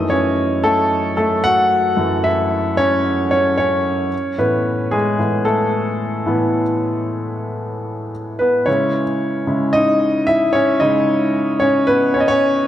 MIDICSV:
0, 0, Header, 1, 2, 480
1, 0, Start_track
1, 0, Tempo, 535619
1, 97, Time_signature, 4, 2, 24, 8
1, 11359, End_track
2, 0, Start_track
2, 0, Title_t, "Grand piano"
2, 0, Program_c, 0, 0
2, 0, Note_on_c, 0, 42, 46
2, 0, Note_on_c, 0, 52, 48
2, 0, Note_on_c, 0, 57, 56
2, 0, Note_on_c, 0, 63, 72
2, 0, Note_on_c, 0, 75, 93
2, 49, Control_c, 0, 64, 127
2, 87, Note_on_c, 0, 73, 85
2, 102, Note_on_c, 0, 61, 59
2, 115, Note_off_c, 0, 75, 0
2, 536, Note_off_c, 0, 42, 0
2, 538, Note_off_c, 0, 52, 0
2, 541, Note_off_c, 0, 57, 0
2, 546, Note_off_c, 0, 61, 0
2, 570, Note_on_c, 0, 69, 89
2, 578, Note_on_c, 0, 57, 65
2, 587, Note_off_c, 0, 73, 0
2, 1020, Note_off_c, 0, 69, 0
2, 1024, Note_off_c, 0, 57, 0
2, 1048, Note_on_c, 0, 69, 81
2, 1058, Note_on_c, 0, 57, 67
2, 1281, Note_off_c, 0, 57, 0
2, 1288, Note_on_c, 0, 78, 107
2, 1299, Note_on_c, 0, 66, 70
2, 1300, Note_off_c, 0, 69, 0
2, 1764, Note_on_c, 0, 42, 58
2, 1769, Note_on_c, 0, 52, 45
2, 1776, Note_on_c, 0, 57, 61
2, 1982, Note_off_c, 0, 66, 0
2, 2005, Note_on_c, 0, 76, 86
2, 2015, Note_on_c, 0, 64, 68
2, 2034, Note_off_c, 0, 78, 0
2, 2462, Note_off_c, 0, 64, 0
2, 2485, Note_on_c, 0, 73, 94
2, 2495, Note_on_c, 0, 61, 77
2, 2506, Note_off_c, 0, 76, 0
2, 2942, Note_off_c, 0, 61, 0
2, 2952, Note_off_c, 0, 73, 0
2, 2966, Note_on_c, 0, 73, 83
2, 2976, Note_on_c, 0, 61, 68
2, 3190, Note_off_c, 0, 73, 0
2, 3199, Note_off_c, 0, 61, 0
2, 3204, Note_on_c, 0, 73, 85
2, 3217, Note_on_c, 0, 61, 68
2, 3655, Note_off_c, 0, 42, 0
2, 3657, Note_off_c, 0, 52, 0
2, 3660, Note_off_c, 0, 57, 0
2, 3708, Control_c, 0, 64, 0
2, 3710, Note_off_c, 0, 63, 0
2, 3853, Control_c, 0, 64, 127
2, 3901, Note_off_c, 0, 61, 0
2, 3926, Note_on_c, 0, 45, 49
2, 3930, Note_on_c, 0, 71, 73
2, 3933, Note_on_c, 0, 52, 44
2, 3937, Note_on_c, 0, 59, 61
2, 3952, Note_off_c, 0, 73, 0
2, 4385, Note_off_c, 0, 59, 0
2, 4404, Note_on_c, 0, 68, 83
2, 4416, Note_on_c, 0, 56, 65
2, 4428, Note_off_c, 0, 71, 0
2, 4635, Note_off_c, 0, 45, 0
2, 4638, Note_off_c, 0, 52, 0
2, 4649, Note_on_c, 0, 45, 44
2, 4652, Note_on_c, 0, 52, 42
2, 4657, Note_on_c, 0, 59, 47
2, 4856, Note_off_c, 0, 68, 0
2, 4863, Note_off_c, 0, 56, 0
2, 4868, Note_off_c, 0, 45, 0
2, 4870, Note_off_c, 0, 52, 0
2, 4873, Note_off_c, 0, 59, 0
2, 4883, Note_on_c, 0, 69, 76
2, 4896, Note_on_c, 0, 57, 60
2, 5611, Note_on_c, 0, 45, 57
2, 5616, Note_on_c, 0, 52, 50
2, 5623, Note_on_c, 0, 59, 64
2, 5933, Note_off_c, 0, 45, 0
2, 5936, Note_off_c, 0, 52, 0
2, 5939, Note_off_c, 0, 59, 0
2, 7254, Note_off_c, 0, 69, 0
2, 7260, Note_off_c, 0, 57, 0
2, 7518, Note_on_c, 0, 71, 75
2, 7540, Note_on_c, 0, 59, 59
2, 7758, Note_on_c, 0, 73, 79
2, 7761, Note_off_c, 0, 59, 0
2, 7769, Note_on_c, 0, 49, 51
2, 7773, Note_on_c, 0, 56, 49
2, 7775, Note_off_c, 0, 71, 0
2, 7779, Note_on_c, 0, 64, 59
2, 7783, Note_on_c, 0, 61, 64
2, 7787, Control_c, 0, 64, 0
2, 7949, Control_c, 0, 64, 127
2, 8092, Note_off_c, 0, 49, 0
2, 8094, Note_off_c, 0, 56, 0
2, 8097, Note_off_c, 0, 64, 0
2, 8488, Note_on_c, 0, 49, 48
2, 8488, Note_on_c, 0, 56, 52
2, 8495, Note_on_c, 0, 64, 55
2, 8691, Note_off_c, 0, 73, 0
2, 8704, Note_off_c, 0, 61, 0
2, 8708, Note_off_c, 0, 49, 0
2, 8708, Note_off_c, 0, 56, 0
2, 8711, Note_off_c, 0, 64, 0
2, 8717, Note_on_c, 0, 75, 95
2, 8739, Note_on_c, 0, 63, 70
2, 9184, Note_off_c, 0, 63, 0
2, 9201, Note_on_c, 0, 76, 95
2, 9218, Note_on_c, 0, 64, 67
2, 9221, Note_off_c, 0, 75, 0
2, 9434, Note_on_c, 0, 73, 93
2, 9440, Note_off_c, 0, 64, 0
2, 9455, Note_on_c, 0, 61, 74
2, 9456, Note_off_c, 0, 76, 0
2, 9677, Note_on_c, 0, 75, 89
2, 9679, Note_off_c, 0, 61, 0
2, 9685, Note_on_c, 0, 49, 56
2, 9689, Note_on_c, 0, 56, 46
2, 9692, Note_off_c, 0, 73, 0
2, 9694, Note_on_c, 0, 64, 59
2, 9699, Note_on_c, 0, 63, 70
2, 10375, Note_off_c, 0, 49, 0
2, 10376, Note_off_c, 0, 56, 0
2, 10379, Note_off_c, 0, 64, 0
2, 10382, Note_off_c, 0, 63, 0
2, 10392, Note_on_c, 0, 73, 92
2, 10414, Note_on_c, 0, 61, 73
2, 10428, Note_off_c, 0, 75, 0
2, 10626, Note_off_c, 0, 73, 0
2, 10637, Note_on_c, 0, 71, 100
2, 10638, Note_off_c, 0, 61, 0
2, 10657, Note_on_c, 0, 59, 74
2, 10879, Note_off_c, 0, 59, 0
2, 10879, Note_on_c, 0, 73, 86
2, 10894, Note_off_c, 0, 71, 0
2, 10895, Note_on_c, 0, 61, 70
2, 10937, Note_on_c, 0, 75, 80
2, 10945, Note_off_c, 0, 73, 0
2, 10954, Note_off_c, 0, 61, 0
2, 11005, Note_on_c, 0, 73, 107
2, 11010, Note_off_c, 0, 75, 0
2, 11028, Note_on_c, 0, 61, 78
2, 11340, Note_off_c, 0, 73, 0
2, 11355, Note_off_c, 0, 61, 0
2, 11359, End_track
0, 0, End_of_file